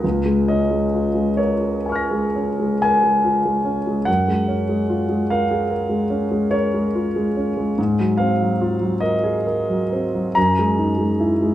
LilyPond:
<<
  \new Staff \with { instrumentName = "Grand piano" } { \time 9/8 \key des \major \tempo 4. = 48 << { r2 <aes'' des''' f''' bes'''>2~ <aes'' des''' f''' bes'''>8 | r1 r8 | r1 r8 | } \\ { r8 ees''4 des''4. aes''4. | ges''4. f''4. des''4. | r8 f''4 ees''4. bes''4. | } >> }
  \new Staff \with { instrumentName = "Grand piano" } { \clef bass \time 9/8 \key des \major des,16 aes16 des'16 aes16 f'16 aes16 bes'16 aes'16 bes'16 aes16 des'16 aes16 bes'16 aes16 f'16 aes16 des'16 aes16 | ges,16 aes16 des'16 aes16 f'16 aes16 bes'16 aes'16 bes'16 aes16 des'16 aes16 bes'16 aes16 f'16 aes16 des'16 aes16 | aes,16 ges16 c'16 ges16 f'16 ges16 bes'16 aes'16 bes'16 ges16 c'16 ges16 ges,16 aes16 ees'16 aes16 fes'16 aes16 | }
>>